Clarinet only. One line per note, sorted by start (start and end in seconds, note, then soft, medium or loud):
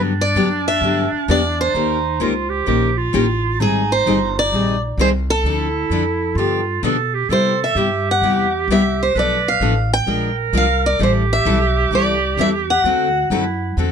0.00 1.75 D4 loud
1.74 2.23 D#4 loud
2.21 2.51 F4 medium
2.49 2.67 G4 loud
2.68 2.98 G4 loud
2.97 3.61 F4 loud
3.60 5.23 D#4 medium
5.43 6.39 E4 medium
6.37 6.83 F4 medium
6.84 7.15 A4 medium
7.14 7.31 G4 medium
7.29 7.78 A4 loud
7.77 9.14 G4 loud
9.14 9.82 B4 loud
10.07 11.02 A#4 loud
11.00 12.86 G4 loud
12.84 13.30 F#4 loud
13.30 13.74 E4 medium
13.78 13.92 D4 medium